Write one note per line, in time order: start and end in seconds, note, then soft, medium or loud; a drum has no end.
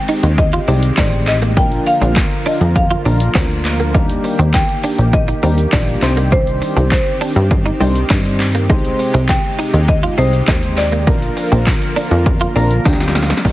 0.00 1.53 D#3 medium
0.00 1.55 G#3 medium
0.00 1.53 C4 medium
0.00 1.53 G4 medium
0.00 0.40 G5 loud
0.08 0.21 D#4 medium
0.08 open hi-hat medium
0.08 shaker soft
0.23 0.59 D#2 loud
0.23 closed hi-hat medium
0.23 shaker medium
0.38 0.94 D#5 loud
0.38 muted clean electric guitar stroke soft
0.38 kick loud
0.38 shaker medium
0.53 0.66 F4 medium
0.53 closed hi-hat medium
0.53 shaker medium
0.67 0.92 C2 loud
0.67 0.83 G#3 medium
0.67 0.83 C4 medium
0.67 0.80 C4 medium
0.67 0.83 D#4 medium
0.67 0.83 G4 medium
0.67 0.83 D5 medium
0.67 open hi-hat medium
0.67 shaker medium
0.83 closed hi-hat medium
0.83 shaker medium
0.97 1.58 A1 medium
0.97 1.28 G#3 medium
0.97 1.29 C4 medium
0.97 1.29 D#4 medium
0.97 1.10 D#4 medium
0.97 1.29 G4 medium
0.97 1.29 C5 medium
0.97 1.28 D5 medium
0.97 kick loud
0.97 clap loud
0.97 tambourine medium
0.97 shaker medium
1.12 closed hi-hat medium
1.12 shaker medium
1.27 1.58 D#5 loud
1.27 muted clean electric guitar stroke soft
1.27 clap medium
1.27 open hi-hat medium
1.27 shaker medium
1.42 1.55 A#3 medium
1.42 closed hi-hat medium
1.42 shaker medium
1.57 1.81 A#1 loud
1.57 3.92 D3 medium
1.57 3.92 F3 medium
1.57 1.70 A#3 medium
1.57 5.98 A#3 medium
1.57 2.19 D4 medium
1.57 2.19 F4 medium
1.57 3.92 F4 medium
1.57 3.92 A#4 medium
1.57 2.19 A#4 medium
1.57 1.88 G5 loud
1.57 kick loud
1.57 shaker medium
1.72 closed hi-hat medium
1.72 shaker medium
1.86 2.48 F5 loud
1.86 muted clean electric guitar stroke soft
1.86 open hi-hat medium
1.86 shaker medium
2.01 2.25 A#1 loud
2.01 2.14 C4 medium
2.01 closed hi-hat medium
2.01 shaker medium
2.16 kick loud
2.16 clap loud
2.16 tambourine medium
2.16 shaker medium
2.31 closed hi-hat soft
2.31 shaker soft
2.46 2.59 D4 medium
2.46 2.77 D#5 medium
2.46 open hi-hat medium
2.46 shaker medium
2.61 2.96 F2 loud
2.61 closed hi-hat medium
2.61 shaker medium
2.76 3.31 F5 medium
2.76 muted clean electric guitar stroke soft
2.76 kick loud
2.76 shaker medium
2.91 3.03 F4 medium
2.91 closed hi-hat medium
2.91 shaker medium
3.05 3.29 A#1 loud
3.05 3.21 D4 medium
3.05 3.18 D4 medium
3.05 3.21 F4 medium
3.05 3.21 A#4 medium
3.05 open hi-hat medium
3.05 shaker medium
3.20 closed hi-hat medium
3.20 shaker medium
3.35 3.96 D2 loud
3.35 3.48 C4 medium
3.35 3.66 D4 medium
3.35 3.66 F4 medium
3.35 3.66 A#4 medium
3.35 kick loud
3.35 clap loud
3.35 tambourine medium
3.35 shaker medium
3.50 closed hi-hat medium
3.50 shaker medium
3.65 muted clean electric guitar stroke soft
3.65 clap medium
3.65 open hi-hat medium
3.65 shaker medium
3.80 3.92 A#3 medium
3.80 closed hi-hat medium
3.80 shaker medium
3.94 4.18 D#2 loud
3.94 8.66 D#3 medium
3.94 4.57 G3 medium
3.94 4.57 A#3 medium
3.94 4.57 D4 medium
3.94 4.07 D#4 medium
3.94 4.57 D#4 medium
3.94 8.66 G4 medium
3.94 4.57 A#4 loud
3.94 kick loud
3.94 shaker medium
4.10 closed hi-hat medium
4.10 shaker medium
4.24 muted clean electric guitar stroke soft
4.24 open hi-hat medium
4.24 shaker soft
4.39 4.63 D#2 loud
4.39 4.52 C4 medium
4.39 closed hi-hat medium
4.39 shaker medium
4.54 5.15 G5 loud
4.54 kick loud
4.54 clap loud
4.54 tambourine loud
4.54 shaker medium
4.69 closed hi-hat soft
4.69 shaker medium
4.83 4.96 D4 medium
4.83 open hi-hat medium
4.83 shaker medium
4.98 5.34 A#1 loud
4.98 closed hi-hat medium
4.98 shaker medium
5.13 5.74 D#5 loud
5.13 muted clean electric guitar stroke soft
5.13 kick loud
5.13 shaker medium
5.28 5.41 D#4 medium
5.28 closed hi-hat medium
5.28 shaker medium
5.43 5.67 D#2 loud
5.43 5.58 G3 medium
5.43 5.58 A#3 medium
5.43 5.56 C4 medium
5.43 5.59 D4 medium
5.43 5.59 D#4 medium
5.43 5.59 A#4 medium
5.43 open hi-hat medium
5.43 shaker medium
5.58 closed hi-hat medium
5.58 shaker medium
5.72 5.96 A#1 medium
5.72 6.01 G3 medium
5.72 6.02 A#3 medium
5.72 5.85 D4 medium
5.72 6.01 D4 medium
5.72 6.01 D#4 medium
5.72 6.03 F4 medium
5.72 6.28 D5 medium
5.72 kick loud
5.72 clap loud
5.72 tambourine medium
5.72 shaker medium
5.88 closed hi-hat medium
5.88 shaker medium
6.02 6.62 C2 loud
6.02 6.97 G3 medium
6.02 8.67 C4 medium
6.02 6.97 C4 medium
6.02 6.97 D4 medium
6.02 6.98 D#4 medium
6.02 6.98 C5 medium
6.02 muted clean electric guitar stroke soft
6.02 clap medium
6.02 open hi-hat medium
6.02 shaker medium
6.17 6.30 A#3 medium
6.17 closed hi-hat medium
6.17 shaker medium
6.32 6.45 C4 medium
6.32 6.87 C5 medium
6.32 kick loud
6.32 shaker medium
6.47 closed hi-hat medium
6.47 shaker medium
6.62 muted clean electric guitar stroke soft
6.62 open hi-hat medium
6.62 shaker medium
6.76 7.00 C2 loud
6.76 6.89 C4 medium
6.76 closed hi-hat medium
6.76 shaker medium
6.91 7.77 C5 medium
6.91 kick loud
6.91 clap loud
6.91 tambourine medium
6.91 shaker medium
7.07 closed hi-hat soft
7.07 shaker soft
7.21 7.34 D4 medium
7.21 open hi-hat medium
7.21 shaker medium
7.36 7.72 G2 loud
7.36 closed hi-hat medium
7.36 shaker medium
7.51 muted clean electric guitar stroke soft
7.51 kick loud
7.51 shaker medium
7.66 7.78 D#4 medium
7.66 closed hi-hat medium
7.66 shaker medium
7.80 8.04 C2 loud
7.80 7.96 G3 medium
7.80 7.96 C4 medium
7.80 7.93 C4 medium
7.80 7.96 D4 medium
7.80 7.96 D#4 medium
7.80 7.96 C5 loud
7.80 open hi-hat medium
7.80 shaker medium
7.95 closed hi-hat medium
7.95 shaker medium
8.10 8.71 G2 medium
8.10 8.41 G3 medium
8.10 8.41 C4 medium
8.10 8.23 D4 medium
8.10 8.41 D4 medium
8.10 8.42 D#4 medium
8.10 8.42 C5 medium
8.10 kick loud
8.10 clap loud
8.10 tambourine medium
8.10 shaker medium
8.25 closed hi-hat medium
8.25 shaker medium
8.40 muted clean electric guitar stroke soft
8.40 clap medium
8.40 open hi-hat medium
8.40 shaker medium
8.55 8.67 A#3 medium
8.55 closed hi-hat medium
8.55 shaker medium
8.69 8.93 C2 loud
8.69 9.32 G#3 medium
8.69 11.05 G#3 medium
8.69 8.82 G#3 medium
8.69 9.32 C4 medium
8.69 9.32 D#4 medium
8.69 11.05 D#4 medium
8.69 11.05 G4 medium
8.69 9.32 G4 medium
8.69 9.32 C5 loud
8.69 kick loud
8.69 shaker medium
8.85 closed hi-hat medium
8.85 shaker medium
8.99 muted clean electric guitar stroke soft
8.99 open hi-hat medium
8.99 shaker soft
9.14 9.38 C2 loud
9.14 9.27 C4 medium
9.14 closed hi-hat medium
9.14 shaker medium
9.29 9.90 G5 loud
9.29 kick loud
9.29 clap loud
9.29 tambourine loud
9.29 shaker medium
9.44 closed hi-hat soft
9.44 shaker soft
9.59 9.71 D#4 medium
9.59 open hi-hat medium
9.59 shaker soft
9.74 10.09 D#2 loud
9.74 closed hi-hat medium
9.74 shaker medium
9.88 10.19 D#5 loud
9.88 muted clean electric guitar stroke soft
9.88 kick loud
9.88 shaker medium
10.03 10.16 F4 medium
10.03 closed hi-hat medium
10.03 shaker medium
10.18 10.42 C2 loud
10.18 10.34 G#3 medium
10.18 10.31 C4 medium
10.18 10.34 C4 medium
10.18 10.34 D#4 medium
10.18 10.34 G4 medium
10.18 10.73 C5 loud
10.18 10.34 D#5 medium
10.18 open hi-hat medium
10.18 shaker medium
10.33 closed hi-hat medium
10.33 shaker medium
10.48 11.09 D#2 medium
10.48 10.79 G#3 medium
10.48 10.79 C4 medium
10.48 10.60 D#4 medium
10.48 10.79 D#4 medium
10.48 10.79 G4 medium
10.48 10.79 C5 medium
10.48 kick loud
10.48 clap loud
10.48 tambourine medium
10.48 shaker medium
10.63 closed hi-hat medium
10.63 shaker medium
10.77 12.81 D5 medium
10.77 muted clean electric guitar stroke soft
10.77 clap medium
10.77 open hi-hat medium
10.77 shaker medium
10.92 11.05 A#3 medium
10.92 closed hi-hat medium
10.92 shaker medium
11.07 11.31 A#1 loud
11.07 13.43 D3 medium
11.07 13.43 F3 medium
11.07 11.20 A#3 medium
11.07 13.43 A#3 medium
11.07 11.70 D4 medium
11.07 11.70 F4 medium
11.07 13.43 F4 medium
11.07 13.43 A#4 medium
11.07 11.70 A#4 medium
11.07 kick loud
11.07 shaker medium
11.22 closed hi-hat medium
11.22 shaker medium
11.37 muted clean electric guitar stroke soft
11.37 open hi-hat medium
11.37 shaker medium
11.52 11.76 A#1 loud
11.52 11.64 C4 medium
11.52 closed hi-hat medium
11.52 shaker medium
11.67 kick loud
11.67 clap loud
11.67 tambourine loud
11.67 shaker medium
11.82 closed hi-hat soft
11.82 shaker medium
11.96 12.09 D4 medium
11.96 open hi-hat medium
11.96 shaker medium
12.11 12.47 F2 medium
12.11 closed hi-hat medium
12.11 shaker medium
12.26 muted clean electric guitar stroke soft
12.26 kick loud
12.26 shaker medium
12.41 12.54 F4 medium
12.41 closed hi-hat medium
12.41 shaker medium
12.56 12.80 A#1 loud
12.56 12.68 C4 medium
12.56 12.71 D4 medium
12.56 12.71 F4 medium
12.56 12.72 A#4 loud
12.56 12.83 A#5 medium
12.56 open hi-hat medium
12.56 shaker medium
12.71 closed hi-hat medium
12.71 shaker medium
12.85 13.33 D2 medium
12.85 13.17 D4 medium
12.85 12.98 D4 medium
12.85 13.17 F4 medium
12.85 13.17 G4 medium
12.85 13.13 G5 medium
12.85 kick loud
12.85 snare medium
12.85 tambourine medium
12.85 shaker medium
12.93 snare medium
13.00 snare medium
13.00 closed hi-hat medium
13.00 shaker medium
13.08 snare medium
13.15 13.43 F5 medium
13.15 muted clean electric guitar stroke soft
13.15 snare medium
13.15 open hi-hat medium
13.15 shaker medium
13.23 snare medium
13.30 13.43 A#3 medium
13.30 snare loud
13.30 closed hi-hat medium
13.30 shaker medium
13.37 snare medium
13.45 13.52 D#2 loud
13.45 13.52 G3 medium
13.45 13.52 D4 medium
13.45 13.52 D#4 medium
13.45 13.52 A#4 medium
13.45 kick loud
13.45 downlifter medium